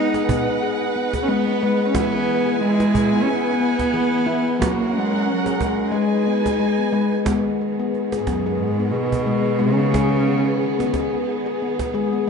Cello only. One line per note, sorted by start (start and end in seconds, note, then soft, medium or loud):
0.00 0.58 D#4 loud
1.22 1.30 C#4 medium
1.28 1.87 B3 medium
1.88 1.98 C#4 medium
1.96 2.62 B3 medium
2.62 3.24 G#3 medium
3.22 3.31 C#4 medium
3.30 4.64 B3 loud
4.63 4.98 A#3 medium
4.96 5.32 G#3 medium
5.30 5.65 F#3 medium
5.63 6.62 G#3 medium
8.20 8.28 G#2 soft
8.26 8.60 F#2 medium
8.58 8.93 G#2 medium
8.92 9.60 B2 medium
9.59 10.93 C#3 loud